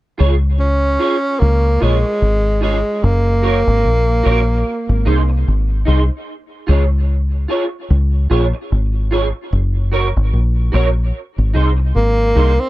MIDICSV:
0, 0, Header, 1, 5, 480
1, 0, Start_track
1, 0, Key_signature, -5, "major"
1, 0, Tempo, 810811
1, 1791, Time_signature, 4, 2, 24, 8
1, 7514, End_track
2, 0, Start_track
2, 0, Title_t, "Clean electric guitar"
2, 0, Program_c, 0, 27
2, 106, Note_on_c, 0, 65, 66
2, 112, Note_on_c, 0, 68, 83
2, 116, Note_on_c, 0, 73, 81
2, 195, Note_off_c, 0, 65, 0
2, 198, Note_off_c, 0, 68, 0
2, 200, Note_off_c, 0, 73, 0
2, 587, Note_on_c, 0, 65, 78
2, 593, Note_on_c, 0, 68, 86
2, 599, Note_on_c, 0, 73, 93
2, 676, Note_off_c, 0, 65, 0
2, 679, Note_off_c, 0, 68, 0
2, 682, Note_off_c, 0, 73, 0
2, 1068, Note_on_c, 0, 65, 82
2, 1075, Note_on_c, 0, 68, 84
2, 1081, Note_on_c, 0, 73, 85
2, 1157, Note_off_c, 0, 65, 0
2, 1160, Note_off_c, 0, 68, 0
2, 1163, Note_off_c, 0, 73, 0
2, 1544, Note_on_c, 0, 65, 79
2, 1550, Note_on_c, 0, 68, 91
2, 1556, Note_on_c, 0, 73, 86
2, 1635, Note_off_c, 0, 65, 0
2, 1637, Note_off_c, 0, 68, 0
2, 1640, Note_off_c, 0, 73, 0
2, 2026, Note_on_c, 0, 66, 75
2, 2033, Note_on_c, 0, 70, 86
2, 2037, Note_on_c, 0, 73, 83
2, 2116, Note_off_c, 0, 66, 0
2, 2119, Note_off_c, 0, 70, 0
2, 2121, Note_off_c, 0, 73, 0
2, 2506, Note_on_c, 0, 66, 92
2, 2514, Note_on_c, 0, 70, 100
2, 2519, Note_on_c, 0, 73, 98
2, 2596, Note_off_c, 0, 66, 0
2, 2600, Note_off_c, 0, 70, 0
2, 2602, Note_off_c, 0, 73, 0
2, 2992, Note_on_c, 0, 63, 81
2, 2995, Note_on_c, 0, 68, 77
2, 3003, Note_on_c, 0, 72, 84
2, 3079, Note_off_c, 0, 63, 0
2, 3080, Note_off_c, 0, 68, 0
2, 3084, Note_off_c, 0, 72, 0
2, 3466, Note_on_c, 0, 63, 76
2, 3473, Note_on_c, 0, 68, 75
2, 3479, Note_on_c, 0, 72, 76
2, 3556, Note_off_c, 0, 63, 0
2, 3559, Note_off_c, 0, 68, 0
2, 3562, Note_off_c, 0, 72, 0
2, 3948, Note_on_c, 0, 65, 76
2, 3956, Note_on_c, 0, 68, 83
2, 3962, Note_on_c, 0, 73, 82
2, 4037, Note_off_c, 0, 65, 0
2, 4041, Note_off_c, 0, 68, 0
2, 4044, Note_off_c, 0, 73, 0
2, 4430, Note_on_c, 0, 65, 84
2, 4435, Note_on_c, 0, 68, 77
2, 4442, Note_on_c, 0, 73, 76
2, 4518, Note_off_c, 0, 65, 0
2, 4521, Note_off_c, 0, 68, 0
2, 4524, Note_off_c, 0, 73, 0
2, 4912, Note_on_c, 0, 65, 71
2, 4917, Note_on_c, 0, 68, 79
2, 4923, Note_on_c, 0, 73, 79
2, 4999, Note_off_c, 0, 65, 0
2, 5001, Note_off_c, 0, 68, 0
2, 5004, Note_off_c, 0, 73, 0
2, 5393, Note_on_c, 0, 65, 72
2, 5400, Note_on_c, 0, 68, 81
2, 5404, Note_on_c, 0, 73, 78
2, 5479, Note_off_c, 0, 65, 0
2, 5483, Note_off_c, 0, 68, 0
2, 5485, Note_off_c, 0, 73, 0
2, 5870, Note_on_c, 0, 66, 74
2, 5876, Note_on_c, 0, 70, 78
2, 5882, Note_on_c, 0, 73, 86
2, 5958, Note_off_c, 0, 66, 0
2, 5961, Note_off_c, 0, 70, 0
2, 5964, Note_off_c, 0, 73, 0
2, 6346, Note_on_c, 0, 66, 76
2, 6352, Note_on_c, 0, 70, 78
2, 6358, Note_on_c, 0, 73, 89
2, 6436, Note_off_c, 0, 66, 0
2, 6439, Note_off_c, 0, 70, 0
2, 6442, Note_off_c, 0, 73, 0
2, 6830, Note_on_c, 0, 63, 74
2, 6834, Note_on_c, 0, 68, 72
2, 6842, Note_on_c, 0, 72, 77
2, 6918, Note_off_c, 0, 63, 0
2, 6920, Note_off_c, 0, 68, 0
2, 6924, Note_off_c, 0, 72, 0
2, 7313, Note_on_c, 0, 63, 69
2, 7318, Note_on_c, 0, 68, 70
2, 7325, Note_on_c, 0, 72, 74
2, 7400, Note_off_c, 0, 63, 0
2, 7402, Note_off_c, 0, 68, 0
2, 7406, Note_off_c, 0, 72, 0
2, 7514, End_track
3, 0, Start_track
3, 0, Title_t, "Tenor saxophone"
3, 0, Program_c, 1, 66
3, 353, Note_on_c, 1, 61, 95
3, 827, Note_on_c, 1, 58, 96
3, 836, Note_off_c, 1, 61, 0
3, 1075, Note_on_c, 1, 56, 94
3, 1084, Note_off_c, 1, 58, 0
3, 1554, Note_off_c, 1, 56, 0
3, 1556, Note_on_c, 1, 56, 85
3, 1798, Note_on_c, 1, 58, 94
3, 1807, Note_off_c, 1, 56, 0
3, 3235, Note_off_c, 1, 58, 0
3, 7078, Note_on_c, 1, 58, 100
3, 7458, Note_on_c, 1, 60, 88
3, 7467, Note_off_c, 1, 58, 0
3, 7514, Note_off_c, 1, 60, 0
3, 7514, End_track
4, 0, Start_track
4, 0, Title_t, "Fingered electric bass"
4, 0, Program_c, 2, 33
4, 120, Note_on_c, 2, 37, 91
4, 572, Note_off_c, 2, 37, 0
4, 839, Note_on_c, 2, 37, 102
4, 1055, Note_off_c, 2, 37, 0
4, 1077, Note_on_c, 2, 34, 80
4, 1200, Note_off_c, 2, 34, 0
4, 1314, Note_on_c, 2, 32, 77
4, 1666, Note_off_c, 2, 32, 0
4, 1797, Note_on_c, 2, 30, 105
4, 2148, Note_off_c, 2, 30, 0
4, 2175, Note_on_c, 2, 32, 87
4, 2266, Note_off_c, 2, 32, 0
4, 2281, Note_on_c, 2, 34, 80
4, 2497, Note_off_c, 2, 34, 0
4, 2523, Note_on_c, 2, 34, 88
4, 2738, Note_off_c, 2, 34, 0
4, 2896, Note_on_c, 2, 32, 94
4, 2987, Note_off_c, 2, 32, 0
4, 2999, Note_on_c, 2, 36, 91
4, 3216, Note_off_c, 2, 36, 0
4, 3244, Note_on_c, 2, 32, 90
4, 3458, Note_off_c, 2, 32, 0
4, 3480, Note_on_c, 2, 36, 90
4, 3602, Note_off_c, 2, 36, 0
4, 3959, Note_on_c, 2, 37, 92
4, 4412, Note_off_c, 2, 37, 0
4, 4679, Note_on_c, 2, 37, 101
4, 4895, Note_off_c, 2, 37, 0
4, 4917, Note_on_c, 2, 34, 96
4, 5040, Note_off_c, 2, 34, 0
4, 5162, Note_on_c, 2, 32, 81
4, 5510, Note_off_c, 2, 32, 0
4, 5639, Note_on_c, 2, 30, 101
4, 5989, Note_off_c, 2, 30, 0
4, 6018, Note_on_c, 2, 32, 83
4, 6108, Note_off_c, 2, 32, 0
4, 6118, Note_on_c, 2, 34, 85
4, 6335, Note_off_c, 2, 34, 0
4, 6358, Note_on_c, 2, 34, 88
4, 6575, Note_off_c, 2, 34, 0
4, 6738, Note_on_c, 2, 32, 89
4, 6828, Note_off_c, 2, 32, 0
4, 6839, Note_on_c, 2, 36, 80
4, 7056, Note_off_c, 2, 36, 0
4, 7079, Note_on_c, 2, 32, 80
4, 7296, Note_off_c, 2, 32, 0
4, 7318, Note_on_c, 2, 36, 85
4, 7441, Note_off_c, 2, 36, 0
4, 7514, End_track
5, 0, Start_track
5, 0, Title_t, "Muted clean electric guitar strokes"
5, 1203, Note_on_c, 9, 29, 45
5, 1262, Note_off_c, 9, 29, 0
5, 3129, Note_on_c, 9, 29, 44
5, 3188, Note_off_c, 9, 29, 0
5, 5053, Note_on_c, 9, 29, 42
5, 5112, Note_off_c, 9, 29, 0
5, 6967, Note_on_c, 9, 29, 35
5, 7026, Note_off_c, 9, 29, 0
5, 7514, End_track
0, 0, End_of_file